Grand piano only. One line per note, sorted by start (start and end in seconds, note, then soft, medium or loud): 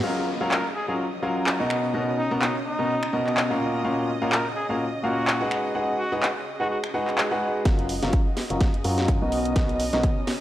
0.04 0.28 F#3 medium
0.04 0.28 C#4 medium
0.04 0.28 F4 medium
0.04 0.28 F#4 medium
0.04 0.28 A#4 medium
0.04 0.28 F5 medium
0.41 0.55 F#3 medium
0.41 0.55 C#4 medium
0.41 0.55 F4 medium
0.41 0.55 F#4 medium
0.41 0.55 A#4 medium
0.41 0.55 F5 loud
0.88 1.03 F#3 medium
0.88 1.03 C#4 medium
0.88 1.03 F4 medium
0.88 1.03 F#4 medium
0.88 1.03 A#4 medium
0.88 1.03 F5 medium
1.23 1.57 F#3 medium
1.23 1.57 C#4 medium
1.23 1.57 F4 medium
1.23 1.57 F#4 medium
1.23 1.57 A#4 medium
1.23 1.57 F5 medium
1.60 1.92 B2 medium
1.60 1.92 B3 medium
1.60 1.92 D#4 medium
1.60 1.92 F#4 medium
1.60 1.92 A#4 medium
1.60 1.92 D#5 medium
1.94 2.19 B2 medium
1.94 2.19 B3 medium
1.94 2.19 D#4 medium
1.94 2.19 F#4 medium
1.94 2.19 A#4 medium
1.94 2.19 D#5 medium
2.31 2.46 B2 medium
2.31 2.46 B3 medium
2.31 2.46 D#4 medium
2.31 2.46 F#4 medium
2.31 2.46 A#4 medium
2.31 2.46 D#5 loud
2.79 2.93 B2 medium
2.79 2.93 B3 medium
2.79 2.93 D#4 medium
2.79 2.93 F#4 medium
2.79 2.93 A#4 medium
2.79 2.93 D#5 medium
3.13 3.47 B2 medium
3.13 3.47 B3 medium
3.13 3.47 D#4 medium
3.13 3.47 F#4 medium
3.13 3.47 A#4 medium
3.13 3.47 D#5 medium
3.50 3.82 A#2 medium
3.50 3.82 C#4 medium
3.50 3.82 F4 medium
3.50 3.82 F#4 medium
3.50 3.82 A#4 medium
3.50 3.82 F5 medium
3.84 4.09 A#2 medium
3.84 4.09 C#4 medium
3.84 4.09 F4 medium
3.84 4.09 F#4 medium
3.84 4.09 A#4 medium
3.84 4.09 F5 medium
4.22 4.36 A#2 medium
4.22 4.36 C#4 medium
4.22 4.36 F4 medium
4.22 4.36 F#4 medium
4.22 4.36 A#4 medium
4.22 4.36 F5 loud
4.69 4.84 A#2 medium
4.69 4.84 C#4 medium
4.69 4.84 F4 medium
4.69 4.84 F#4 medium
4.69 4.84 A#4 medium
4.69 4.84 F5 medium
5.03 5.38 A#2 medium
5.03 5.38 C#4 medium
5.03 5.38 F4 medium
5.03 5.38 F#4 medium
5.03 5.38 A#4 medium
5.03 5.38 F5 medium
5.41 5.73 G#3 medium
5.41 5.73 D#4 medium
5.41 5.73 F#4 medium
5.41 5.72 G#4 medium
5.41 5.73 B4 medium
5.41 5.73 F#5 medium
5.75 6.00 G#3 medium
5.75 6.00 D#4 medium
5.75 6.00 F#4 medium
5.75 6.00 G#4 medium
5.75 6.00 B4 medium
5.75 6.00 F#5 medium
6.12 6.26 G#3 medium
6.12 6.26 D#4 medium
6.12 6.26 F#4 medium
6.12 6.26 G#4 medium
6.12 6.26 B4 medium
6.12 6.27 F#5 loud
6.60 6.74 G#3 medium
6.60 6.74 D#4 medium
6.60 6.74 F#4 medium
6.60 6.74 G#4 medium
6.60 6.74 B4 medium
6.60 6.74 F#5 medium
6.94 7.28 G#3 medium
6.94 7.28 D#4 medium
6.94 7.28 F#4 medium
6.94 7.28 G#4 medium
6.94 7.28 B4 medium
6.94 7.28 F#5 medium
7.31 7.63 G#3 medium
7.31 7.63 D#4 medium
7.31 7.63 F#4 medium
7.31 7.63 G#4 medium
7.31 7.63 B4 medium
7.31 7.63 F#5 medium
7.65 7.90 F#3 medium
7.65 7.90 C#4 medium
7.65 7.90 F4 medium
7.65 7.90 F#4 medium
7.65 7.90 A#4 medium
8.03 8.17 F#3 loud
8.03 8.17 C#4 medium
8.03 8.17 F4 medium
8.03 8.17 F#4 medium
8.03 8.17 A#4 medium
8.03 8.17 F5 loud
8.50 8.65 F#3 medium
8.50 8.65 C#4 medium
8.50 8.65 F4 medium
8.50 8.65 F#4 medium
8.50 8.65 A#4 medium
8.50 8.65 F5 medium
8.84 9.19 F#3 medium
8.84 9.19 C#4 medium
8.84 9.19 F4 medium
8.84 9.19 F#4 medium
8.84 9.19 A#4 medium
8.84 9.19 F5 loud
9.22 9.53 B2 medium
9.22 9.53 B3 medium
9.22 9.53 D#4 medium
9.22 9.53 F#4 medium
9.22 9.53 A#4 medium
9.22 9.53 D#5 medium
9.56 9.81 B2 medium
9.56 9.81 B3 medium
9.56 9.81 D#4 medium
9.56 9.81 A#4 medium
9.56 9.81 D#5 medium
9.93 10.07 B2 loud
9.93 10.07 B3 medium
9.93 10.07 D#4 medium
9.93 10.07 F#4 medium
9.93 10.07 A#4 medium
9.93 10.07 D#5 loud